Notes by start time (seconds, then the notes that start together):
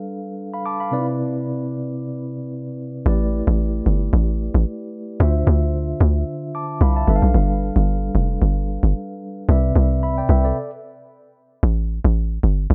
Already playing: G3 D4 A4 B4 F5
0.54 F5 B5
0.66 A5 D6
0.80 F5 B5
0.91 C3 C4 D#4 B4 D5
0.99 E4
3.06 A1 A3 E4 G4 B4 D5
3.47 A1
3.86 G1
4.13 A1
4.54 A1
5.20 D2 D3 D4 F4 C5 E5
5.47 D2
6.01 D2
6.55 A5 D6
6.81 C2 F5 B5
6.96 E5 A5
7.07 G1 G3 D4 A4 B4 E5
7.16 F5
7.22 B1
7.34 G1
7.76 G1
8.15 F1
8.42 G1
8.83 G1
9.48 C2 C3 C4 B4 D5 E5
9.76 C2
10.03 E5 B5
10.18 D5 G5
10.29 C2 B4 E5
10.45 A4 D5
11.63 A1
12.05 A1
12.43 G1
12.70 A1